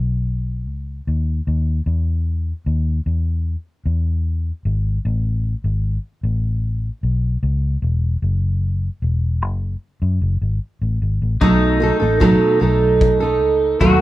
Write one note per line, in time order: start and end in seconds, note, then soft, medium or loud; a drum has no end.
0.00 0.67 B1 medium
0.67 1.00 C#2 medium
1.07 1.40 D#2 medium
1.47 1.80 D#2 medium
1.86 2.52 E2 medium
2.66 2.99 D#2 medium
3.06 3.55 E2 medium
3.86 4.51 E2 medium
4.65 4.98 G#1 medium
5.05 5.54 A1 loud
5.64 5.97 G#1 medium
6.23 6.89 A1 medium
7.03 7.36 B1 medium
7.43 7.76 C#2 medium
7.82 8.15 E1 medium
8.22 8.88 F#1 medium
9.02 9.42 E1 medium
9.42 9.75 F#1 medium
10.02 10.18 F#2 medium
10.22 10.38 F#1 medium
10.42 10.58 G#1 medium
10.82 10.98 A1 medium
11.02 11.18 G#1 medium
11.22 11.38 A1 medium
11.41 11.90 B1 medium
11.41 11.81 B2 medium
11.41 11.79 F#3 medium
11.41 11.80 A3 medium
11.41 11.81 D#4 medium
11.41 11.82 A4 medium
11.41 kick loud
11.80 12.01 F#3 medium
11.80 12.01 A3 medium
11.80 12.00 D#4 medium
11.80 11.98 A4 medium
12.00 12.34 A1 medium
12.00 12.20 A3 soft
12.00 12.21 D#4 medium
12.00 12.20 A4 medium
12.20 12.61 B2 medium
12.20 12.58 F#3 medium
12.20 12.60 A3 medium
12.20 12.61 D#4 medium
12.20 12.62 A4 medium
12.20 kick loud
12.60 13.42 B1 medium
12.60 13.20 F#3 medium
12.60 13.21 A3 medium
12.60 13.21 D#4 medium
12.60 13.19 A4 medium
13.01 kick loud
13.20 13.80 A3 soft
13.20 13.81 D#4 medium
13.20 13.80 A4 medium
13.42 13.74 C#2 medium
13.80 14.01 D#2 medium
13.80 14.00 B2 medium
13.80 14.01 F#3 medium
13.80 14.01 A3 medium
13.80 14.00 D#4 medium
13.80 14.01 F#4 medium
13.80 13.98 A4 medium
13.80 kick loud